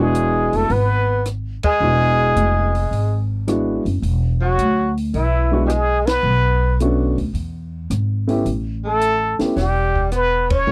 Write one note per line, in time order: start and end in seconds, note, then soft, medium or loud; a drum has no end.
0.00 0.50 E1 medium
0.00 0.67 G#3 medium
0.00 0.57 G#3 medium
0.00 0.67 B3 medium
0.00 0.68 D4 medium
0.00 0.68 E4 medium
0.00 0.68 F#4 medium
0.00 0.58 G#4 medium
0.15 closed hi-hat medium
0.53 0.69 F1 medium
0.53 0.72 A3 medium
0.53 0.74 A4 medium
0.53 open hi-hat soft
0.70 1.60 G#1 medium
0.70 1.26 B3 medium
0.70 1.27 B4 medium
0.70 open hi-hat soft
1.25 cross-stick medium
1.25 closed hi-hat soft
1.63 3.26 G#3 medium
1.63 3.27 G#4 loud
1.63 muted upright bass stroke soft
1.63 kick medium
1.63 ride medium
1.80 2.32 E1 medium
1.80 2.67 G#3 medium
1.80 2.68 B3 soft
1.80 2.68 D4 soft
1.80 2.68 E4 soft
1.80 2.68 F#4 medium
2.36 2.88 F1 medium
2.36 closed hi-hat medium
2.75 open hi-hat soft
2.91 3.81 G#1 medium
2.91 open hi-hat soft
3.47 3.82 G#3 medium
3.47 3.82 B3 medium
3.47 3.82 D4 medium
3.47 3.83 E4 medium
3.47 3.83 F#4 medium
3.47 cross-stick medium
3.47 closed hi-hat soft
3.85 4.01 F#1 medium
3.85 open hi-hat soft
4.02 4.54 E1 medium
4.02 open hi-hat soft
4.41 4.93 F#3 medium
4.41 4.93 F#4 loud
4.58 5.10 D2 medium
4.58 closed hi-hat medium
4.97 open hi-hat soft
5.14 6.21 B1 medium
5.14 5.61 E3 medium
5.14 5.62 E4 medium
5.14 open hi-hat soft
5.52 5.67 G#3 medium
5.52 5.67 B3 medium
5.52 5.67 D4 medium
5.52 5.68 E4 medium
5.52 5.68 F#4 medium
5.66 5.69 G3 medium
5.66 6.07 G#3 medium
5.66 5.70 G4 medium
5.66 6.08 G#4 medium
5.66 cross-stick medium
5.66 closed hi-hat medium
6.06 6.79 B3 medium
6.06 6.79 B4 loud
6.06 snare medium
6.06 ride medium
6.23 7.13 B1 medium
6.80 7.15 A3 medium
6.80 7.14 B3 medium
6.80 7.15 C#4 medium
6.80 7.15 D4 medium
6.80 7.15 F#4 medium
6.80 closed hi-hat medium
7.17 7.33 D2 medium
7.17 open hi-hat soft
7.34 7.86 E2 medium
7.34 open hi-hat soft
7.90 8.42 G#1 medium
7.90 cross-stick medium
7.90 closed hi-hat medium
8.27 8.44 A3 medium
8.27 8.44 B3 medium
8.27 8.44 C#4 medium
8.27 8.44 E4 medium
8.27 8.44 G4 medium
8.27 open hi-hat soft
8.45 9.35 A1 medium
8.45 open hi-hat soft
8.84 9.36 A3 medium
8.84 9.37 A4 loud
9.01 closed hi-hat medium
9.39 9.55 A3 medium
9.39 9.55 B3 soft
9.39 9.55 C#4 medium
9.39 9.55 E4 medium
9.39 9.56 G4 medium
9.39 muted upright bass stroke soft
9.39 snare soft
9.39 open hi-hat soft
9.56 10.63 E1 medium
9.56 10.08 G3 medium
9.56 10.09 G4 medium
9.56 snare soft
9.56 open hi-hat soft
9.95 kick medium
10.12 10.52 B3 medium
10.12 10.56 B4 loud
10.12 cross-stick medium
10.12 closed hi-hat medium
10.50 10.72 C#4 medium
10.50 kick medium
10.50 ride medium
10.54 10.72 C#5 loud
10.67 10.72 A1 medium
10.67 10.72 A3 soft
10.67 10.72 B3 soft
10.67 10.72 C#4 soft
10.67 10.72 E4 soft
10.67 10.72 G4 medium